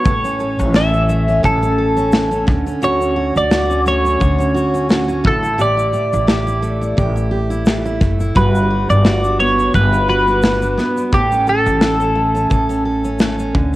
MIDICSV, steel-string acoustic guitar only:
0, 0, Header, 1, 2, 480
1, 0, Start_track
1, 0, Tempo, 692042
1, 39, Time_signature, 4, 2, 24, 8
1, 9543, End_track
2, 0, Start_track
2, 0, Title_t, "Steel-string acoustic guitar"
2, 0, Program_c, 0, 25
2, 0, Note_on_c, 0, 55, 71
2, 0, Note_on_c, 0, 59, 67
2, 0, Note_on_c, 0, 62, 55
2, 32, Note_on_c, 0, 45, 71
2, 37, Note_on_c, 0, 69, 70
2, 90, Note_off_c, 0, 59, 0
2, 90, Note_off_c, 0, 62, 0
2, 169, Note_on_c, 0, 61, 59
2, 190, Note_off_c, 0, 55, 0
2, 276, Note_off_c, 0, 69, 0
2, 279, Note_on_c, 0, 69, 62
2, 405, Note_off_c, 0, 61, 0
2, 408, Note_on_c, 0, 61, 58
2, 513, Note_off_c, 0, 69, 0
2, 516, Note_on_c, 0, 69, 79
2, 645, Note_off_c, 0, 61, 0
2, 648, Note_on_c, 0, 61, 54
2, 758, Note_on_c, 0, 57, 59
2, 884, Note_off_c, 0, 61, 0
2, 887, Note_on_c, 0, 61, 59
2, 983, Note_off_c, 0, 45, 0
2, 991, Note_on_c, 0, 45, 75
2, 992, Note_off_c, 0, 69, 0
2, 995, Note_on_c, 0, 69, 59
2, 1125, Note_off_c, 0, 61, 0
2, 1127, Note_on_c, 0, 61, 68
2, 1232, Note_off_c, 0, 69, 0
2, 1235, Note_on_c, 0, 69, 66
2, 1360, Note_off_c, 0, 61, 0
2, 1363, Note_on_c, 0, 61, 60
2, 1470, Note_off_c, 0, 69, 0
2, 1473, Note_on_c, 0, 69, 66
2, 1600, Note_off_c, 0, 61, 0
2, 1602, Note_on_c, 0, 61, 61
2, 1710, Note_on_c, 0, 50, 85
2, 1767, Note_off_c, 0, 45, 0
2, 1844, Note_off_c, 0, 61, 0
2, 1847, Note_on_c, 0, 61, 64
2, 1951, Note_off_c, 0, 50, 0
2, 1954, Note_on_c, 0, 50, 76
2, 1957, Note_off_c, 0, 69, 0
2, 1960, Note_on_c, 0, 66, 65
2, 2076, Note_off_c, 0, 61, 0
2, 2085, Note_on_c, 0, 61, 56
2, 2184, Note_off_c, 0, 66, 0
2, 2192, Note_on_c, 0, 66, 64
2, 2327, Note_off_c, 0, 61, 0
2, 2424, Note_off_c, 0, 66, 0
2, 2433, Note_on_c, 0, 66, 80
2, 2565, Note_on_c, 0, 61, 52
2, 2673, Note_off_c, 0, 57, 0
2, 2676, Note_on_c, 0, 57, 61
2, 2799, Note_off_c, 0, 61, 0
2, 2807, Note_on_c, 0, 61, 61
2, 2912, Note_off_c, 0, 66, 0
2, 2913, Note_off_c, 0, 50, 0
2, 2915, Note_on_c, 0, 50, 74
2, 2920, Note_on_c, 0, 66, 64
2, 3034, Note_off_c, 0, 61, 0
2, 3042, Note_on_c, 0, 61, 66
2, 3144, Note_off_c, 0, 66, 0
2, 3152, Note_on_c, 0, 66, 70
2, 3277, Note_off_c, 0, 61, 0
2, 3285, Note_on_c, 0, 61, 59
2, 3384, Note_off_c, 0, 66, 0
2, 3393, Note_on_c, 0, 66, 65
2, 3515, Note_off_c, 0, 61, 0
2, 3523, Note_on_c, 0, 61, 63
2, 3633, Note_on_c, 0, 45, 88
2, 3687, Note_off_c, 0, 61, 0
2, 3688, Note_off_c, 0, 66, 0
2, 3763, Note_on_c, 0, 64, 59
2, 3784, Note_off_c, 0, 50, 0
2, 3862, Note_off_c, 0, 45, 0
2, 3870, Note_on_c, 0, 45, 78
2, 3875, Note_on_c, 0, 67, 66
2, 3896, Note_off_c, 0, 57, 0
2, 3995, Note_off_c, 0, 64, 0
2, 4003, Note_on_c, 0, 64, 52
2, 4110, Note_off_c, 0, 67, 0
2, 4113, Note_on_c, 0, 67, 60
2, 4242, Note_off_c, 0, 64, 0
2, 4251, Note_on_c, 0, 64, 53
2, 4348, Note_off_c, 0, 67, 0
2, 4351, Note_on_c, 0, 67, 65
2, 4477, Note_off_c, 0, 64, 0
2, 4486, Note_on_c, 0, 64, 56
2, 4594, Note_on_c, 0, 57, 63
2, 4717, Note_off_c, 0, 64, 0
2, 4725, Note_on_c, 0, 64, 56
2, 4824, Note_off_c, 0, 45, 0
2, 4832, Note_on_c, 0, 45, 74
2, 4835, Note_off_c, 0, 67, 0
2, 4838, Note_on_c, 0, 67, 60
2, 4955, Note_off_c, 0, 64, 0
2, 4964, Note_on_c, 0, 64, 61
2, 5067, Note_off_c, 0, 67, 0
2, 5070, Note_on_c, 0, 67, 67
2, 5195, Note_off_c, 0, 64, 0
2, 5203, Note_on_c, 0, 64, 64
2, 5313, Note_off_c, 0, 67, 0
2, 5315, Note_on_c, 0, 67, 63
2, 5439, Note_off_c, 0, 64, 0
2, 5448, Note_on_c, 0, 64, 60
2, 5545, Note_off_c, 0, 57, 0
2, 5554, Note_on_c, 0, 57, 66
2, 5682, Note_off_c, 0, 64, 0
2, 5690, Note_on_c, 0, 64, 53
2, 5792, Note_on_c, 0, 55, 77
2, 5796, Note_off_c, 0, 67, 0
2, 5798, Note_on_c, 0, 66, 61
2, 5848, Note_off_c, 0, 45, 0
2, 5849, Note_off_c, 0, 57, 0
2, 5851, Note_off_c, 0, 64, 0
2, 5929, Note_on_c, 0, 62, 55
2, 6028, Note_off_c, 0, 66, 0
2, 6036, Note_on_c, 0, 66, 63
2, 6164, Note_off_c, 0, 62, 0
2, 6172, Note_on_c, 0, 62, 58
2, 6273, Note_off_c, 0, 66, 0
2, 6281, Note_on_c, 0, 66, 77
2, 6405, Note_off_c, 0, 62, 0
2, 6414, Note_on_c, 0, 62, 58
2, 6517, Note_on_c, 0, 59, 56
2, 6639, Note_off_c, 0, 62, 0
2, 6647, Note_on_c, 0, 62, 59
2, 6753, Note_off_c, 0, 66, 0
2, 6754, Note_off_c, 0, 55, 0
2, 6757, Note_on_c, 0, 55, 69
2, 6762, Note_on_c, 0, 66, 57
2, 6875, Note_off_c, 0, 62, 0
2, 6883, Note_on_c, 0, 62, 65
2, 6986, Note_off_c, 0, 66, 0
2, 6995, Note_on_c, 0, 66, 68
2, 7123, Note_off_c, 0, 62, 0
2, 7131, Note_on_c, 0, 62, 57
2, 7225, Note_off_c, 0, 66, 0
2, 7234, Note_on_c, 0, 66, 62
2, 7359, Note_off_c, 0, 62, 0
2, 7367, Note_on_c, 0, 62, 64
2, 7466, Note_off_c, 0, 59, 0
2, 7474, Note_on_c, 0, 59, 66
2, 7604, Note_off_c, 0, 62, 0
2, 7612, Note_on_c, 0, 62, 55
2, 7716, Note_off_c, 0, 66, 0
2, 7716, Note_on_c, 0, 45, 79
2, 7721, Note_on_c, 0, 69, 65
2, 7769, Note_off_c, 0, 59, 0
2, 7772, Note_off_c, 0, 62, 0
2, 7852, Note_on_c, 0, 61, 57
2, 7873, Note_off_c, 0, 55, 0
2, 7954, Note_off_c, 0, 69, 0
2, 7957, Note_on_c, 0, 69, 63
2, 8083, Note_off_c, 0, 61, 0
2, 8086, Note_on_c, 0, 61, 55
2, 8189, Note_off_c, 0, 69, 0
2, 8192, Note_on_c, 0, 69, 68
2, 8319, Note_off_c, 0, 61, 0
2, 8322, Note_on_c, 0, 61, 61
2, 8430, Note_on_c, 0, 57, 65
2, 8561, Note_off_c, 0, 61, 0
2, 8564, Note_on_c, 0, 61, 57
2, 8662, Note_off_c, 0, 45, 0
2, 8670, Note_on_c, 0, 45, 70
2, 8671, Note_off_c, 0, 69, 0
2, 8674, Note_on_c, 0, 69, 61
2, 8800, Note_off_c, 0, 61, 0
2, 8803, Note_on_c, 0, 61, 64
2, 8912, Note_off_c, 0, 69, 0
2, 8915, Note_on_c, 0, 69, 60
2, 9046, Note_off_c, 0, 61, 0
2, 9048, Note_on_c, 0, 61, 59
2, 9154, Note_off_c, 0, 69, 0
2, 9157, Note_on_c, 0, 69, 65
2, 9289, Note_off_c, 0, 61, 0
2, 9292, Note_on_c, 0, 61, 61
2, 9398, Note_on_c, 0, 50, 83
2, 9447, Note_off_c, 0, 45, 0
2, 9526, Note_off_c, 0, 61, 0
2, 9543, Note_off_c, 0, 50, 0
2, 9543, Note_off_c, 0, 57, 0
2, 9543, Note_off_c, 0, 69, 0
2, 9543, End_track
0, 0, End_of_file